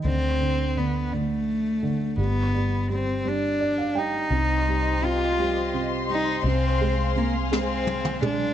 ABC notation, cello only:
X:1
M:6/8
L:1/8
Q:3/8=56
K:Cm
V:1 name="Cello"
C2 =B, =A,3 | =B,2 C D2 E- | E2 F2 z E | C2 B, C2 D |]